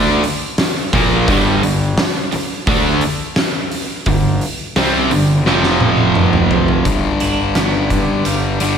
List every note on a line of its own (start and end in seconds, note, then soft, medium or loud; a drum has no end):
0.00 0.21 D2 loud
0.00 0.22 D3 loud
0.00 0.23 A3 loud
0.00 0.23 D4 loud
0.06 snare soft
0.23 muted distorted electric guitar stroke medium
0.23 muted overdriven electric guitar stroke medium
0.23 muted picked electric bass stroke soft
0.23 open hi-hat medium
0.58 snare loud
0.58 open hi-hat medium
0.93 1.26 A#1 loud
0.93 1.27 A#2 medium
0.93 1.28 F3 loud
0.93 1.28 A#3 loud
0.93 kick loud
0.93 open hi-hat medium
1.27 1.61 G1 medium
1.27 1.62 G2 loud
1.27 1.62 D3 loud
1.27 1.62 G3 loud
1.27 kick loud
1.27 open hi-hat medium
1.63 1.96 G1 medium
1.63 1.91 G2 medium
1.63 1.91 D3 medium
1.63 open hi-hat medium
1.98 snare loud
1.98 open hi-hat medium
2.32 muted overdriven electric guitar stroke medium
2.32 muted distorted electric guitar stroke medium
2.32 muted picked electric bass stroke soft
2.32 open hi-hat medium
2.67 3.00 D2 loud
2.67 3.02 D3 loud
2.67 3.02 A3 loud
2.67 3.03 D4 loud
2.67 kick loud
2.67 open hi-hat medium
3.01 open hi-hat medium
3.36 snare loud
3.36 open hi-hat medium
3.72 open hi-hat medium
4.06 4.40 G1 medium
4.06 4.35 G2 medium
4.06 4.35 D3 medium
4.06 kick medium
4.06 open hi-hat medium
4.41 open hi-hat medium
4.76 5.09 C2 loud
4.76 5.10 C3 medium
4.76 5.11 G3 medium
4.76 5.11 C4 loud
4.76 snare loud
4.76 open hi-hat medium
5.11 5.44 G1 medium
5.11 5.40 G2 medium
5.11 5.40 D3 medium
5.11 open hi-hat medium
5.45 6.86 F1 medium
5.45 6.84 F2 loud
5.45 6.85 C3 loud
5.45 6.85 F3 loud
5.45 snare medium
5.63 snare medium
5.81 high tom medium
5.97 high tom medium
6.15 mid tom medium
6.33 mid tom medium
6.51 floor tom loud
6.68 floor tom medium
6.84 7.17 G1 medium
6.84 8.58 G2 medium
6.84 8.62 G2 medium
6.84 8.59 D3 medium
6.84 8.60 G3 medium
6.84 kick loud
6.84 closed hi-hat medium
7.20 7.53 G1 medium
7.20 8.78 D4 medium
7.20 closed hi-hat medium
7.55 7.88 G1 medium
7.55 8.61 B3 medium
7.55 snare loud
7.55 closed hi-hat medium
7.90 8.22 G2 medium
7.90 8.78 D3 medium
7.90 kick medium
7.90 closed hi-hat medium
8.25 8.57 G1 medium
8.25 8.78 G3 medium
8.25 closed hi-hat medium
8.60 8.78 G1 medium
8.60 8.78 G2 medium
8.60 8.78 D3 medium
8.60 8.78 G3 medium
8.60 8.78 B3 medium
8.60 closed hi-hat medium